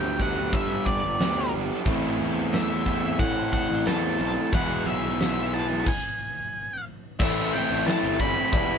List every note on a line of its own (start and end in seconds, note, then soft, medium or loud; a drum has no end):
0.00 0.50 D2 medium
0.00 0.18 G2 medium
0.00 0.19 D3 medium
0.00 0.19 G3 medium
0.00 0.19 B3 medium
0.00 0.37 B3 soft
0.00 0.19 D4 medium
0.00 0.36 D4 soft
0.00 0.18 G4 medium
0.00 0.35 G4 medium
0.00 0.21 G5 loud
0.05 0.38 G3 soft
0.19 1.17 G2 medium
0.19 1.18 D3 medium
0.19 1.19 G3 medium
0.19 1.19 B3 medium
0.19 1.18 D4 medium
0.19 1.18 G4 medium
0.19 0.55 F#5 medium
0.19 kick medium
0.19 open hi-hat medium
0.36 0.70 G3 soft
0.36 0.69 B3 soft
0.36 0.69 D4 soft
0.36 0.67 G4 medium
0.53 1.00 G2 medium
0.53 0.86 E5 medium
0.53 kick loud
0.53 open hi-hat medium
0.68 0.84 G3 soft
0.68 0.85 B3 soft
0.68 0.85 D4 medium
0.68 0.86 G4 medium
0.85 1.03 G3 medium
0.85 1.03 B3 medium
0.85 1.01 D4 medium
0.85 1.00 G4 medium
0.85 1.50 D5 medium
0.85 kick medium
0.85 open hi-hat medium
1.01 1.19 G1 medium
1.01 1.18 G3 soft
1.01 1.19 B3 medium
1.01 1.19 D4 medium
1.01 1.19 G4 medium
1.18 1.51 D2 medium
1.18 1.84 G2 medium
1.18 1.53 G2 medium
1.18 1.53 D3 medium
1.18 1.85 D3 medium
1.18 1.50 G3 medium
1.18 1.85 G3 medium
1.18 1.52 B3 medium
1.18 1.85 B3 medium
1.18 1.53 D4 medium
1.18 1.86 D4 medium
1.18 1.53 G4 medium
1.18 1.86 G4 medium
1.18 snare loud
1.18 open hi-hat medium
1.52 1.69 G1 medium
1.52 1.85 G3 medium
1.52 1.85 B3 medium
1.52 1.86 D4 medium
1.52 1.87 G4 medium
1.52 open hi-hat medium
1.57 1.80 A3 medium
1.57 1.81 B3 medium
1.62 1.83 C4 medium
1.62 1.84 D4 medium
1.68 1.86 E4 medium
1.68 1.87 F4 medium
1.73 1.88 G4 medium
1.73 1.90 A4 medium
1.79 1.91 B4 medium
1.79 1.86 C5 medium
1.84 2.17 A1 medium
1.84 2.19 A2 medium
1.84 2.85 A2 medium
1.84 2.16 E3 medium
1.84 2.88 E3 medium
1.84 2.17 A3 medium
1.84 4.51 A3 medium
1.84 2.85 A3 medium
1.84 2.18 C4 medium
1.84 2.86 C4 medium
1.84 2.19 E4 medium
1.84 4.51 E4 medium
1.84 4.51 C5 medium
1.84 1.94 D5 medium
1.84 kick loud
1.84 open hi-hat medium
1.89 2.86 E4 medium
2.17 3.16 E2 medium
2.17 2.35 E3 medium
2.17 2.36 A3 medium
2.17 2.35 C4 medium
2.17 2.33 E4 medium
2.17 open hi-hat medium
2.35 2.51 A3 soft
2.35 2.51 C4 soft
2.35 2.52 E4 medium
2.51 2.69 A2 medium
2.51 2.70 E3 medium
2.51 2.69 A3 medium
2.51 2.68 C4 medium
2.51 2.66 E4 loud
2.51 3.22 E5 medium
2.51 snare loud
2.51 open hi-hat medium
2.67 3.03 A3 soft
2.67 3.02 C4 soft
2.67 3.00 E4 medium
2.86 3.86 A2 medium
2.86 3.86 E3 medium
2.86 3.85 A3 medium
2.86 3.85 C4 medium
2.86 3.85 E4 medium
2.86 kick medium
2.86 open hi-hat medium
3.01 3.36 A3 soft
3.01 3.35 C4 medium
3.01 3.34 E4 medium
3.19 3.66 A2 loud
3.19 3.52 F#5 medium
3.19 kick loud
3.19 open hi-hat medium
3.35 3.50 A3 soft
3.35 3.51 C4 soft
3.35 3.53 E4 soft
3.51 3.69 E3 medium
3.51 3.69 A3 medium
3.51 3.68 C4 medium
3.51 3.66 E4 medium
3.51 3.87 F#5 medium
3.51 kick medium
3.51 open hi-hat medium
3.68 3.86 A1 medium
3.68 3.85 A3 soft
3.68 3.84 C4 medium
3.68 3.85 E4 medium
3.85 4.18 E2 medium
3.85 4.19 A2 medium
3.85 4.52 A2 medium
3.85 4.16 E3 medium
3.85 4.52 E3 medium
3.85 4.17 A3 medium
3.85 4.52 A3 medium
3.85 4.17 C4 medium
3.85 4.18 E4 medium
3.85 4.20 A5 loud
3.85 snare loud
3.85 open hi-hat medium
3.89 4.53 C4 medium
3.89 4.53 E4 medium
4.17 4.36 B1 medium
4.17 4.35 E3 medium
4.17 4.35 A3 medium
4.17 4.35 C4 medium
4.17 4.33 E4 medium
4.17 4.52 A5 loud
4.17 open hi-hat medium
4.34 4.52 A3 soft
4.34 4.52 C4 soft
4.34 4.52 E4 soft
4.51 4.84 E1 loud
4.51 4.86 E2 medium
4.51 5.51 E2 medium
4.51 4.86 B2 medium
4.51 5.52 B2 medium
4.51 4.84 E3 medium
4.51 5.52 E3 medium
4.51 4.85 G#3 medium
4.51 5.85 G#3 medium
4.51 5.52 G#3 medium
4.51 4.86 B3 medium
4.51 4.87 E4 medium
4.51 5.85 E4 medium
4.51 5.85 B4 medium
4.51 4.88 F#5 loud
4.51 kick loud
4.51 open hi-hat medium
4.55 5.53 B3 medium
4.55 5.52 E4 medium
4.85 5.82 B1 medium
4.85 5.03 E3 medium
4.85 5.03 G#3 medium
4.85 5.02 B3 medium
4.85 5.01 E4 medium
4.85 5.55 E5 medium
4.85 open hi-hat medium
5.02 5.20 E3 soft
5.02 5.20 G#3 soft
5.02 5.20 B3 soft
5.02 5.20 E4 medium
5.20 5.37 E2 medium
5.20 5.37 B2 medium
5.20 5.37 E3 medium
5.20 5.37 G#3 loud
5.20 5.36 B3 medium
5.20 5.35 E4 medium
5.20 snare loud
5.20 open hi-hat medium
5.36 5.71 E3 soft
5.36 5.70 G#3 soft
5.36 5.69 B3 medium
5.36 5.68 E4 medium
5.53 5.87 E2 medium
5.53 5.86 B2 medium
5.53 5.86 E3 medium
5.53 5.86 G#3 medium
5.53 5.85 B3 medium
5.53 5.85 E4 medium
5.53 5.88 A5 medium
5.53 open hi-hat medium
5.70 5.88 E3 soft
5.70 5.88 G#3 medium
5.70 5.87 B3 medium
5.70 5.87 E4 medium
5.86 6.83 G#5 medium
5.86 kick loud
5.86 crash medium
7.20 7.51 A1 loud
7.20 7.53 A2 medium
7.20 7.53 E3 medium
7.20 8.52 A3 medium
7.20 7.53 A3 loud
7.20 7.54 C4 medium
7.20 8.52 E4 medium
7.20 7.54 E4 medium
7.20 8.52 C5 medium
7.20 7.54 E5 loud
7.20 kick loud
7.20 crash loud
7.20 cowbell medium
7.53 7.86 A2 medium
7.53 7.86 E3 medium
7.53 7.87 A3 medium
7.53 7.87 C4 medium
7.53 7.88 E4 medium
7.53 7.86 G5 medium
7.70 7.86 A1 medium
7.87 8.19 A2 loud
7.87 8.19 E3 loud
7.87 8.20 A3 loud
7.87 8.20 C4 loud
7.87 8.21 E4 loud
7.87 8.21 A5 loud
7.87 snare loud
7.87 open hi-hat medium
7.87 cowbell medium
8.04 8.34 G1 medium
8.04 snare soft
8.20 8.51 A2 medium
8.20 8.51 E3 medium
8.20 8.52 A3 medium
8.20 8.52 C4 medium
8.20 8.52 E4 loud
8.20 8.52 B5 medium
8.20 kick medium
8.20 cowbell medium
8.53 8.69 E1 loud
8.53 8.78 E2 loud
8.53 8.78 B2 loud
8.53 8.78 E3 loud
8.53 8.78 G3 loud
8.53 8.78 B3 medium
8.53 8.78 B3 loud
8.53 8.78 E4 loud
8.53 8.78 G4 medium
8.53 8.78 E5 medium
8.53 8.78 B5 loud
8.53 kick loud
8.53 open hi-hat medium
8.53 cowbell loud